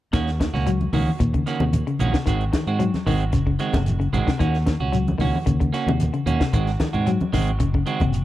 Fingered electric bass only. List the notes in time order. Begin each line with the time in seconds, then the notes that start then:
0.13 D#2
0.53 C#2
0.93 C#2
1.07 muted fingered electric bass stroke
1.20 D#2
1.60 D#2
2.00 A#1
2.27 G#1
2.67 G#2
3.06 G#1
3.33 F#1
3.73 F#1
4.13 G#1
4.40 D#2
4.80 C#2
5.19 C#2
5.33 muted fingered electric bass stroke
5.47 D#2
5.86 D#2
6.26 D#2
6.53 G#1
6.94 G#2
7.33 G#1
7.60 F#1
8.01 F#1